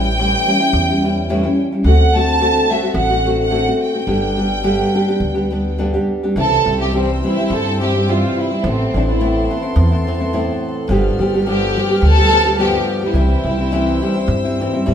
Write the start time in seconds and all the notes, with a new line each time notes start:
Already playing: A1 E3 G3 C#4 E4 G5
0.18 A2 E3 G3 C#4 E4
0.47 E3 G3 C#4 E4
0.60 G3 C#4 E4
0.73 E2
0.89 G3 C#4 E4
1.03 E3 G3 C#4 E4
1.29 A2 E3 G3 C#4 E4
1.43 G3 C#4 E4
1.72 G3 C#4 E4
1.84 D2 D3 A3 C4 F#4 F#5
2.15 D3 A3 C4 F#4 A5
2.40 D3 A3 C4 F#4
2.70 D3 A3 C4 F#4 E5
2.83 A3 C4 F#4
2.94 A1 F#5
3.10 A3 C4 F#4
3.25 D3 A3 C4 F#4
3.40 F#5
3.50 D3 A3 C4 F#4
3.67 A3 C4 F#4
3.84 G5
3.93 A3 C4 F#4
4.07 G1 G2 D3 G3 B3 D4 G4
4.37 G3 B3 D4 G4
4.63 G2 D3 G3 B3 D4 G4
4.93 G3 B3 D4 G4
5.08 G3 B3 D4 G4
5.20 D2
5.34 G3 B3 D4 G4
5.51 G3 B3 D4 G4
5.78 G2 D3 G3 B3 D4 G4
5.94 G3 B3 D4 G4
6.23 G3 B3 D4 G4
6.36 C2 C3 E3 G3 C4 E4 A4 C5 G5 E6
6.66 C2 E3 G3 C4 E4
6.80 G3 C4 E4 G4
6.92 C3 E3 G3 C4 E4
6.97 C4
7.23 E3 G3 C4 E4
7.37 G3 C4 E4
7.50 G2 A4
7.65 G3 C4 E4
7.81 E3 G3 C4 E4 G4
7.94 G3 C4 E4
8.08 C3 E3 G3 C4 E4 F4
8.38 E4
8.51 G3 C4 E4
8.63 A1 A2 E3 B3 C4 E4 A4 A5 C6
8.94 A1 E3 B3 C4 D4 E4
9.08 B3 C4 E4
9.20 A2 E3 B3 C4 E4
9.50 E3 B3 C4 E4
9.62 B3 C4 E4
9.76 E2
9.92 B3 C4 E4
10.07 E3 B3 C4 E4
10.20 B3 C4 E4
10.33 A2 E3 B3 C4 E4
10.89 G1 G2 D3 F3 G3 B3 G4 G5 F6
11.19 G1 F3 G3 B3 G4
11.34 F3 G3 B3 G4
11.46 G2 D3 F3 G3 B3 G4
11.76 F3 G3 B3 G4
11.90 F3 G3 B3 G4
12.02 D2 A4
12.17 F3 G3 B3 G4
12.31 F3 G3 B3 G4
12.46 F3 G3 B3 G4
12.58 G2 D3 F3 G3 B3 G4
13.03 F3 G3 B3 E4 G4
13.13 C2 C3 E3 G3 C4 E4 C5 E6
13.45 C2 E3 G3 C4 E4
13.59 G3 C4 E4
13.71 C3 E3 G3 C4 E4
14.01 E3 G3 C4 E4
14.15 G3 C4 E4
14.28 G2
14.45 G3 C4 E4
14.60 E3 G3 C4 E4
14.73 G3 C4 E4
14.86 A2 C3 E3 G3 C4 E4